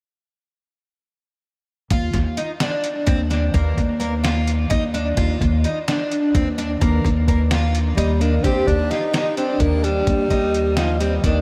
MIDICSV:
0, 0, Header, 1, 5, 480
1, 0, Start_track
1, 0, Key_signature, -3, "major"
1, 0, Tempo, 466200
1, 1964, Time_signature, 7, 3, 24, 8
1, 11751, End_track
2, 0, Start_track
2, 0, Title_t, "Twelve-string acoustic guitar"
2, 0, Program_c, 0, 25
2, 1970, Note_on_c, 0, 65, 77
2, 2242, Note_off_c, 0, 65, 0
2, 2441, Note_on_c, 0, 63, 62
2, 2579, Note_off_c, 0, 63, 0
2, 2684, Note_on_c, 0, 62, 74
2, 2957, Note_off_c, 0, 62, 0
2, 3155, Note_on_c, 0, 60, 78
2, 3294, Note_off_c, 0, 60, 0
2, 3400, Note_on_c, 0, 62, 62
2, 3538, Note_off_c, 0, 62, 0
2, 3643, Note_on_c, 0, 58, 83
2, 3916, Note_off_c, 0, 58, 0
2, 4116, Note_on_c, 0, 58, 71
2, 4255, Note_off_c, 0, 58, 0
2, 4361, Note_on_c, 0, 65, 76
2, 4635, Note_off_c, 0, 65, 0
2, 4839, Note_on_c, 0, 63, 79
2, 4977, Note_off_c, 0, 63, 0
2, 5086, Note_on_c, 0, 62, 65
2, 5222, Note_off_c, 0, 62, 0
2, 5323, Note_on_c, 0, 65, 84
2, 5597, Note_off_c, 0, 65, 0
2, 5815, Note_on_c, 0, 63, 64
2, 5948, Note_off_c, 0, 63, 0
2, 6052, Note_on_c, 0, 62, 76
2, 6323, Note_off_c, 0, 62, 0
2, 6534, Note_on_c, 0, 60, 78
2, 6668, Note_off_c, 0, 60, 0
2, 6774, Note_on_c, 0, 62, 72
2, 6908, Note_off_c, 0, 62, 0
2, 7015, Note_on_c, 0, 58, 79
2, 7285, Note_off_c, 0, 58, 0
2, 7497, Note_on_c, 0, 58, 72
2, 7631, Note_off_c, 0, 58, 0
2, 7734, Note_on_c, 0, 65, 70
2, 8005, Note_off_c, 0, 65, 0
2, 8212, Note_on_c, 0, 63, 76
2, 8347, Note_off_c, 0, 63, 0
2, 8451, Note_on_c, 0, 62, 69
2, 8586, Note_off_c, 0, 62, 0
2, 8690, Note_on_c, 0, 67, 77
2, 8962, Note_off_c, 0, 67, 0
2, 9170, Note_on_c, 0, 65, 63
2, 9305, Note_off_c, 0, 65, 0
2, 9405, Note_on_c, 0, 63, 70
2, 9542, Note_off_c, 0, 63, 0
2, 9650, Note_on_c, 0, 62, 67
2, 9922, Note_off_c, 0, 62, 0
2, 10129, Note_on_c, 0, 62, 65
2, 10401, Note_off_c, 0, 62, 0
2, 10607, Note_on_c, 0, 63, 67
2, 10881, Note_off_c, 0, 63, 0
2, 11086, Note_on_c, 0, 63, 78
2, 11223, Note_off_c, 0, 63, 0
2, 11331, Note_on_c, 0, 60, 70
2, 11467, Note_off_c, 0, 60, 0
2, 11574, Note_on_c, 0, 62, 74
2, 11709, Note_off_c, 0, 62, 0
2, 11751, End_track
3, 0, Start_track
3, 0, Title_t, "Tenor saxophone"
3, 0, Program_c, 1, 66
3, 8200, Note_on_c, 1, 55, 75
3, 8452, Note_on_c, 1, 58, 74
3, 8468, Note_off_c, 1, 55, 0
3, 8689, Note_on_c, 1, 60, 83
3, 8705, Note_off_c, 1, 58, 0
3, 8924, Note_on_c, 1, 62, 83
3, 8940, Note_off_c, 1, 60, 0
3, 9171, Note_on_c, 1, 63, 93
3, 9186, Note_off_c, 1, 62, 0
3, 9642, Note_off_c, 1, 63, 0
3, 9648, Note_on_c, 1, 60, 75
3, 9896, Note_on_c, 1, 58, 77
3, 9912, Note_off_c, 1, 60, 0
3, 10127, Note_on_c, 1, 55, 88
3, 10142, Note_off_c, 1, 58, 0
3, 11096, Note_on_c, 1, 53, 85
3, 11111, Note_off_c, 1, 55, 0
3, 11319, Note_off_c, 1, 53, 0
3, 11325, Note_on_c, 1, 55, 68
3, 11550, Note_off_c, 1, 55, 0
3, 11581, Note_on_c, 1, 51, 64
3, 11751, Note_off_c, 1, 51, 0
3, 11751, End_track
4, 0, Start_track
4, 0, Title_t, "Upright bass"
4, 0, Program_c, 2, 32
4, 1964, Note_on_c, 2, 39, 81
4, 2191, Note_off_c, 2, 39, 0
4, 2202, Note_on_c, 2, 39, 80
4, 2430, Note_off_c, 2, 39, 0
4, 3168, Note_on_c, 2, 39, 84
4, 3620, Note_off_c, 2, 39, 0
4, 3647, Note_on_c, 2, 39, 93
4, 3873, Note_off_c, 2, 39, 0
4, 3889, Note_on_c, 2, 39, 87
4, 4806, Note_off_c, 2, 39, 0
4, 4845, Note_on_c, 2, 39, 83
4, 5299, Note_off_c, 2, 39, 0
4, 5327, Note_on_c, 2, 39, 88
4, 5553, Note_off_c, 2, 39, 0
4, 5575, Note_on_c, 2, 39, 81
4, 5797, Note_off_c, 2, 39, 0
4, 6536, Note_on_c, 2, 39, 84
4, 6985, Note_off_c, 2, 39, 0
4, 7012, Note_on_c, 2, 39, 91
4, 7236, Note_off_c, 2, 39, 0
4, 7252, Note_on_c, 2, 39, 82
4, 8168, Note_off_c, 2, 39, 0
4, 8210, Note_on_c, 2, 39, 83
4, 8662, Note_off_c, 2, 39, 0
4, 8689, Note_on_c, 2, 39, 74
4, 8914, Note_off_c, 2, 39, 0
4, 8929, Note_on_c, 2, 39, 78
4, 9155, Note_off_c, 2, 39, 0
4, 9888, Note_on_c, 2, 39, 75
4, 10342, Note_off_c, 2, 39, 0
4, 10367, Note_on_c, 2, 39, 86
4, 10594, Note_off_c, 2, 39, 0
4, 10613, Note_on_c, 2, 39, 77
4, 11530, Note_off_c, 2, 39, 0
4, 11571, Note_on_c, 2, 39, 73
4, 11751, Note_off_c, 2, 39, 0
4, 11751, End_track
5, 0, Start_track
5, 0, Title_t, "Drums"
5, 1961, Note_on_c, 9, 42, 72
5, 1965, Note_on_c, 9, 36, 90
5, 2064, Note_off_c, 9, 42, 0
5, 2068, Note_off_c, 9, 36, 0
5, 2199, Note_on_c, 9, 38, 28
5, 2199, Note_on_c, 9, 42, 56
5, 2203, Note_on_c, 9, 36, 60
5, 2302, Note_off_c, 9, 38, 0
5, 2302, Note_off_c, 9, 42, 0
5, 2306, Note_off_c, 9, 36, 0
5, 2444, Note_on_c, 9, 42, 51
5, 2547, Note_off_c, 9, 42, 0
5, 2680, Note_on_c, 9, 38, 94
5, 2680, Note_on_c, 9, 42, 72
5, 2783, Note_off_c, 9, 38, 0
5, 2783, Note_off_c, 9, 42, 0
5, 2921, Note_on_c, 9, 42, 54
5, 3024, Note_off_c, 9, 42, 0
5, 3159, Note_on_c, 9, 42, 77
5, 3164, Note_on_c, 9, 36, 98
5, 3262, Note_off_c, 9, 42, 0
5, 3267, Note_off_c, 9, 36, 0
5, 3406, Note_on_c, 9, 38, 30
5, 3406, Note_on_c, 9, 42, 53
5, 3509, Note_off_c, 9, 38, 0
5, 3509, Note_off_c, 9, 42, 0
5, 3647, Note_on_c, 9, 36, 102
5, 3650, Note_on_c, 9, 42, 73
5, 3750, Note_off_c, 9, 36, 0
5, 3753, Note_off_c, 9, 42, 0
5, 3887, Note_on_c, 9, 36, 59
5, 3890, Note_on_c, 9, 42, 54
5, 3990, Note_off_c, 9, 36, 0
5, 3993, Note_off_c, 9, 42, 0
5, 4128, Note_on_c, 9, 42, 49
5, 4231, Note_off_c, 9, 42, 0
5, 4370, Note_on_c, 9, 38, 88
5, 4370, Note_on_c, 9, 42, 69
5, 4473, Note_off_c, 9, 38, 0
5, 4473, Note_off_c, 9, 42, 0
5, 4607, Note_on_c, 9, 42, 54
5, 4710, Note_off_c, 9, 42, 0
5, 4846, Note_on_c, 9, 42, 72
5, 4848, Note_on_c, 9, 36, 93
5, 4949, Note_off_c, 9, 42, 0
5, 4951, Note_off_c, 9, 36, 0
5, 5091, Note_on_c, 9, 42, 49
5, 5194, Note_off_c, 9, 42, 0
5, 5324, Note_on_c, 9, 42, 65
5, 5329, Note_on_c, 9, 36, 98
5, 5427, Note_off_c, 9, 42, 0
5, 5432, Note_off_c, 9, 36, 0
5, 5571, Note_on_c, 9, 36, 65
5, 5576, Note_on_c, 9, 42, 52
5, 5674, Note_off_c, 9, 36, 0
5, 5679, Note_off_c, 9, 42, 0
5, 5809, Note_on_c, 9, 42, 50
5, 5912, Note_off_c, 9, 42, 0
5, 6055, Note_on_c, 9, 38, 94
5, 6055, Note_on_c, 9, 42, 70
5, 6158, Note_off_c, 9, 38, 0
5, 6158, Note_off_c, 9, 42, 0
5, 6297, Note_on_c, 9, 42, 52
5, 6399, Note_off_c, 9, 42, 0
5, 6535, Note_on_c, 9, 36, 92
5, 6537, Note_on_c, 9, 42, 73
5, 6638, Note_off_c, 9, 36, 0
5, 6640, Note_off_c, 9, 42, 0
5, 6780, Note_on_c, 9, 42, 55
5, 6883, Note_off_c, 9, 42, 0
5, 7016, Note_on_c, 9, 36, 93
5, 7017, Note_on_c, 9, 42, 76
5, 7119, Note_off_c, 9, 36, 0
5, 7120, Note_off_c, 9, 42, 0
5, 7256, Note_on_c, 9, 36, 65
5, 7265, Note_on_c, 9, 42, 54
5, 7359, Note_off_c, 9, 36, 0
5, 7368, Note_off_c, 9, 42, 0
5, 7494, Note_on_c, 9, 36, 61
5, 7497, Note_on_c, 9, 42, 55
5, 7597, Note_off_c, 9, 36, 0
5, 7600, Note_off_c, 9, 42, 0
5, 7731, Note_on_c, 9, 38, 97
5, 7731, Note_on_c, 9, 42, 69
5, 7834, Note_off_c, 9, 38, 0
5, 7834, Note_off_c, 9, 42, 0
5, 7976, Note_on_c, 9, 42, 60
5, 8079, Note_off_c, 9, 42, 0
5, 8215, Note_on_c, 9, 42, 76
5, 8318, Note_off_c, 9, 42, 0
5, 8455, Note_on_c, 9, 42, 54
5, 8558, Note_off_c, 9, 42, 0
5, 8692, Note_on_c, 9, 36, 84
5, 8694, Note_on_c, 9, 42, 67
5, 8795, Note_off_c, 9, 36, 0
5, 8796, Note_off_c, 9, 42, 0
5, 8932, Note_on_c, 9, 36, 60
5, 8937, Note_on_c, 9, 42, 50
5, 9035, Note_off_c, 9, 36, 0
5, 9040, Note_off_c, 9, 42, 0
5, 9175, Note_on_c, 9, 38, 29
5, 9175, Note_on_c, 9, 42, 46
5, 9278, Note_off_c, 9, 38, 0
5, 9278, Note_off_c, 9, 42, 0
5, 9412, Note_on_c, 9, 38, 96
5, 9412, Note_on_c, 9, 42, 67
5, 9515, Note_off_c, 9, 38, 0
5, 9515, Note_off_c, 9, 42, 0
5, 9651, Note_on_c, 9, 42, 50
5, 9754, Note_off_c, 9, 42, 0
5, 9884, Note_on_c, 9, 42, 72
5, 9888, Note_on_c, 9, 36, 89
5, 9987, Note_off_c, 9, 42, 0
5, 9991, Note_off_c, 9, 36, 0
5, 10132, Note_on_c, 9, 42, 51
5, 10235, Note_off_c, 9, 42, 0
5, 10369, Note_on_c, 9, 42, 74
5, 10371, Note_on_c, 9, 36, 88
5, 10472, Note_off_c, 9, 42, 0
5, 10474, Note_off_c, 9, 36, 0
5, 10611, Note_on_c, 9, 36, 57
5, 10613, Note_on_c, 9, 42, 52
5, 10714, Note_off_c, 9, 36, 0
5, 10716, Note_off_c, 9, 42, 0
5, 10857, Note_on_c, 9, 42, 57
5, 10960, Note_off_c, 9, 42, 0
5, 11087, Note_on_c, 9, 38, 90
5, 11087, Note_on_c, 9, 42, 69
5, 11189, Note_off_c, 9, 38, 0
5, 11189, Note_off_c, 9, 42, 0
5, 11331, Note_on_c, 9, 42, 53
5, 11434, Note_off_c, 9, 42, 0
5, 11571, Note_on_c, 9, 36, 88
5, 11571, Note_on_c, 9, 38, 29
5, 11571, Note_on_c, 9, 42, 70
5, 11674, Note_off_c, 9, 36, 0
5, 11674, Note_off_c, 9, 38, 0
5, 11674, Note_off_c, 9, 42, 0
5, 11751, End_track
0, 0, End_of_file